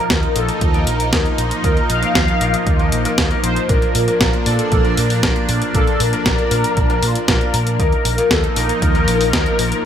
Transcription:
Already playing: F3 A#3 D#4 F4 A#4
0.10 D#2, kick, snare, closed hi-hat
0.23 closed hi-hat
0.36 A#1 A#3 D#4 F4 A4, closed hi-hat
0.49 closed hi-hat
0.61 D#2, kick, closed hi-hat
0.74 A#3 D#4 F4 A#4, closed hi-hat
0.87 A#1 A#4, closed hi-hat
1.00 closed hi-hat
1.13 D#2 A#3 D#4 F4 A#4, kick, snare, closed hi-hat
1.26 closed hi-hat
1.38 A#1, closed hi-hat
1.51 closed hi-hat
1.64 D#2 A#3 D#4 F4 A#4, kick, closed hi-hat
1.77 closed hi-hat
1.89 A#1 F5, closed hi-hat
2.02 A#3 D#4 F4 A#4, closed hi-hat
2.15 D#2, kick, snare, closed hi-hat
2.28 closed hi-hat
2.41 A#1 A#3 D#4 F4 A#4, closed hi-hat
2.54 closed hi-hat
2.67 D#2, kick, closed hi-hat
2.79 A#3 D#4 F4 A#4, closed hi-hat
2.92 A#1, closed hi-hat
3.05 A#3 D#4 F4 A#4, closed hi-hat
3.18 D#2, kick, snare, closed hi-hat
3.31 A#3 D#4 F4 A#4, closed hi-hat
3.44 A#1 C5, closed hi-hat
3.56 closed hi-hat
3.69 A#1 A#3 D4 F4 A#4, kick, closed hi-hat
3.82 closed hi-hat
3.95 A#2, open hi-hat
4.08 A#3 D4 F4 A#4, closed hi-hat
4.21 A#1, kick, snare, closed hi-hat
4.33 closed hi-hat
4.46 A#2 A#3 D4 F4 A4 D5, open hi-hat
4.59 closed hi-hat
4.72 A#1, kick, closed hi-hat
4.84 A#3 D4 F4 A#4, closed hi-hat
4.97 A#2 A#4, open hi-hat
5.10 open hi-hat
5.23 A#1 A#3 D4 F4 A#4, kick, snare, closed hi-hat
5.36 closed hi-hat
5.49 A#2, open hi-hat
5.62 closed hi-hat
5.74 A#1 A#3 D4 F4 A4 A#4, kick, closed hi-hat
5.87 closed hi-hat
6.00 A#2 A#4, open hi-hat
6.13 A#3 D4 F4 A#4, closed hi-hat
6.26 A#1, kick, snare, closed hi-hat
6.38 closed hi-hat
6.51 A#2 A#3 D4 F4 A#4, open hi-hat
6.64 closed hi-hat
6.77 A#1, kick, closed hi-hat
6.90 A#3 D4 F4 A#4, closed hi-hat
7.03 A#2 F4, open hi-hat
7.15 closed hi-hat
7.28 A#1 A#3 D4 F4 A#4, kick, snare, closed hi-hat
7.41 closed hi-hat
7.54 A#2, open hi-hat
7.67 closed hi-hat
7.79 D#2 F3 A#3 D#4 F4 A#4, kick, closed hi-hat
7.92 closed hi-hat
8.05 A#1, open hi-hat
8.18 A#3 D#4 F4 A#4, closed hi-hat
8.31 D#2 A4, kick, snare, closed hi-hat
8.44 closed hi-hat
8.56 A#1 A#3 D#4 F4 A#4, open hi-hat
8.69 closed hi-hat
8.82 D#2, kick, closed hi-hat
8.95 A#3 D#4 F4 A#4, closed hi-hat
9.08 A#1, open hi-hat
9.21 open hi-hat
9.33 D#2 A#3 D#4 F4 A#4, kick, snare, closed hi-hat
9.46 closed hi-hat
9.59 A#1, open hi-hat
9.72 closed hi-hat

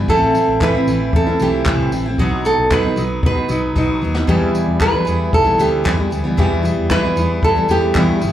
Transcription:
0.08 A1 A2 E3 A3 C4 E4 A4, kick
0.34 E3 A3 C4 E4, tambourine
0.48 A1
0.61 A2 E3 A3 C4 E4 B4, kick, clap
0.75 A3 C4 E4
0.87 A1 E3 A3 C4 E4, tambourine
1.13 E2 A4, kick
1.27 A3 C4 E4
1.40 B1 E3 A3 C4 G4, tambourine
1.44 E4
1.66 C2 A2 E3 A3 C4 E4, kick, clap
1.92 A1 E3 A3 C4 E4, tambourine
2.06 A3 C4 E4
2.18 B1 B2 F#3 B3 D#4 F#4, kick
2.45 A4, tambourine
2.58 B1
2.71 B2 F#3 B3 D#4 F#4 B4, kick, clap
2.83 B3 D#4 F#4
2.96 B1 F#3 B3 D#4 F#4, tambourine
3.23 B2 B4, kick
3.35 B3 D#4 F#4
3.48 B1 F#3 B3 D#4 F#4, tambourine
3.76 B1 B2 F#3 B3 D#4 F#4, kick
4.02 D#2 F#3 B3 D#4 F#4
4.14 B3 D#4 F#4, snare
4.27 E2 B2 E3 G3 B3 E4 G4, kick
4.55 tambourine
4.67 E2
4.80 E2 B2 E3 G3 B3 E4 B4, kick, clap
4.92 E3 G3 B3 E4
5.05 E2 E3 G3 B3 E4, tambourine
5.33 B1 A4, kick
5.44 E3 G3 B3 E4
5.58 D2 E3 G3 B3 E4 G4, tambourine
5.84 E2 B2 E3 G3 B3 E4, kick, clap
5.97 E3 G3 B3 E4
6.11 D2 E3 G3 B3 E4, tambourine
6.24 E3 G3 B3 E4
6.37 E2 B2 E3 G3 B3 E4 G4, kick
6.63 E3 G3 B3 E4, tambourine
6.78 E2
6.90 E2 B2 E3 G3 B3 E4 B4, kick, clap
7.03 E3 G3 B3 E4
7.16 E2 E3 G3 B3 E4, tambourine
7.43 E3 A4, kick
7.55 E3 G3 B3 E4
7.68 E2 E3 G3 B3 E4 G4, tambourine
7.95 E2 B2 E3 G3 B3 E4, kick, clap
8.20 G1 E3 G3 B3 E4, tambourine

